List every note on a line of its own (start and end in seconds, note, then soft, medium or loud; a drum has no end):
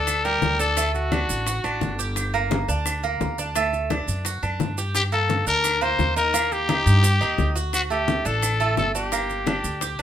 0.00 0.39 D2 medium
0.00 0.24 D4 medium
0.00 0.26 A4 medium
0.07 high bongo medium
0.07 high conga soft
0.07 claves medium
0.07 maracas medium
0.25 0.59 G3 medium
0.25 0.61 A#4 loud
0.25 high bongo soft
0.25 high conga soft
0.25 maracas soft
0.42 1.23 D2 medium
0.42 high bongo soft
0.42 low bongo medium
0.42 high conga medium
0.42 maracas soft
0.59 0.77 D4 medium
0.59 0.94 A4 medium
0.59 high conga soft
0.59 maracas medium
0.77 1.11 A3 medium
0.77 high bongo medium
0.77 high conga soft
0.77 claves medium
0.77 maracas medium
0.94 1.95 F#4 medium
0.94 high bongo soft
0.94 high conga soft
0.94 maracas soft
1.12 1.46 D4 medium
1.12 high bongo medium
1.12 high conga medium
1.12 claves medium
1.12 maracas soft
1.29 1.62 A1 medium
1.29 high bongo soft
1.29 high conga soft
1.29 maracas medium
1.47 1.64 F#4 medium
1.47 high bongo medium
1.47 high conga soft
1.47 maracas medium
1.64 1.80 A1 medium
1.64 1.98 D4 medium
1.64 high bongo soft
1.64 high conga soft
1.64 claves medium
1.64 maracas soft
1.81 2.63 G1 medium
1.81 high bongo soft
1.81 low bongo medium
1.81 high conga medium
1.81 maracas soft
1.99 2.33 G4 medium
1.99 maracas medium
2.16 high bongo medium
2.16 high conga soft
2.16 claves medium
2.16 maracas medium
2.34 2.68 A#3 medium
2.34 high bongo soft
2.34 high conga soft
2.34 maracas soft
2.51 high bongo medium
2.51 high conga medium
2.51 maracas soft
2.68 3.17 D2 medium
2.68 3.02 D4 medium
2.68 high bongo soft
2.68 high conga soft
2.68 maracas medium
2.86 high bongo medium
2.86 high conga soft
2.86 claves medium
2.86 maracas medium
3.03 3.37 A#3 medium
3.03 high bongo soft
3.03 high conga soft
3.03 maracas soft
3.21 4.02 D2 medium
3.21 high bongo soft
3.21 low bongo medium
3.21 high conga medium
3.21 maracas soft
3.38 3.55 D4 medium
3.38 high conga soft
3.38 maracas medium
3.56 3.90 A3 medium
3.56 high bongo medium
3.56 high conga soft
3.56 claves medium
3.56 maracas medium
3.73 high bongo soft
3.73 high conga soft
3.73 maracas soft
3.90 4.24 D4 medium
3.90 high bongo medium
3.90 high conga medium
3.90 claves medium
3.90 maracas soft
4.07 4.40 F#2 medium
4.07 high bongo soft
4.07 high conga soft
4.07 maracas medium
4.25 4.42 F#4 medium
4.25 high bongo medium
4.25 high conga soft
4.25 maracas medium
4.43 4.59 F#2 medium
4.43 4.77 D4 medium
4.43 high bongo soft
4.43 high conga soft
4.43 claves medium
4.43 maracas soft
4.59 5.41 G2 medium
4.59 high bongo soft
4.59 low bongo medium
4.59 high conga medium
4.59 maracas soft
4.78 5.12 G4 medium
4.78 maracas medium
4.95 5.03 G4 loud
4.95 high bongo medium
4.95 high conga soft
4.95 claves medium
4.95 maracas medium
5.12 5.46 A#3 medium
5.12 5.45 A4 medium
5.12 high bongo soft
5.12 high conga soft
5.12 maracas soft
5.30 high bongo medium
5.30 high conga medium
5.30 maracas soft
5.47 5.96 D2 medium
5.47 5.81 D4 medium
5.47 5.84 A#4 loud
5.47 high bongo soft
5.47 high conga soft
5.47 maracas medium
5.64 high bongo medium
5.64 high conga soft
5.64 claves medium
5.64 maracas medium
5.81 6.16 A#3 medium
5.81 6.16 C5 medium
5.81 high bongo soft
5.81 high conga soft
5.81 maracas soft
5.99 6.80 D#2 medium
5.99 high bongo soft
5.99 low bongo medium
5.99 high conga medium
5.99 maracas soft
6.16 6.34 D#4 medium
6.16 6.54 A#4 medium
6.16 high conga soft
6.16 maracas medium
6.34 6.68 A#3 medium
6.34 high bongo medium
6.34 high conga soft
6.34 claves medium
6.34 maracas medium
6.52 7.57 G4 loud
6.52 high bongo soft
6.52 high conga soft
6.52 maracas soft
6.69 7.03 D#4 medium
6.69 high bongo medium
6.69 high conga medium
6.69 claves medium
6.69 maracas soft
6.86 7.19 G2 medium
6.86 high bongo soft
6.86 high conga soft
6.86 maracas medium
7.03 7.21 G4 medium
7.03 high bongo medium
7.03 high conga soft
7.03 maracas medium
7.21 7.38 D#2 medium
7.21 7.55 D#4 medium
7.21 high bongo soft
7.21 high conga soft
7.21 claves medium
7.21 maracas soft
7.38 8.20 D2 medium
7.38 high bongo soft
7.38 low bongo medium
7.38 high conga medium
7.38 maracas soft
7.56 7.90 F#4 medium
7.56 maracas medium
7.73 7.82 F#4 medium
7.73 high bongo medium
7.73 high conga soft
7.73 claves medium
7.73 maracas medium
7.90 8.24 A3 medium
7.90 8.27 G4 medium
7.90 high bongo soft
7.90 high conga soft
7.90 maracas soft
8.08 high bongo medium
8.08 high conga medium
8.08 maracas soft
8.25 8.74 A1 loud
8.25 8.59 D4 medium
8.25 8.78 A4 medium
8.25 high bongo soft
8.25 high conga soft
8.25 maracas medium
8.42 high bongo medium
8.42 high conga soft
8.42 claves medium
8.42 maracas medium
8.60 8.94 A3 medium
8.60 high bongo soft
8.60 high conga soft
8.60 maracas soft
8.77 9.59 G1 medium
8.77 8.94 A4 medium
8.77 high bongo soft
8.77 low bongo medium
8.77 high conga medium
8.77 maracas soft
8.95 9.12 D4 medium
8.95 10.02 G4 medium
8.95 high conga soft
8.95 maracas medium
9.12 9.46 A#3 medium
9.12 high bongo medium
9.12 high conga soft
9.12 claves medium
9.12 maracas medium
9.29 high bongo soft
9.29 high conga soft
9.29 maracas soft
9.47 9.81 D4 medium
9.47 high bongo medium
9.47 high conga medium
9.47 claves medium
9.47 maracas soft
9.64 9.97 D2 medium
9.64 high bongo soft
9.64 high conga soft
9.64 maracas medium
9.81 9.99 G4 medium
9.81 high bongo medium
9.81 high conga soft
9.81 maracas medium
9.99 10.02 D4 medium
9.99 high bongo soft
9.99 high conga soft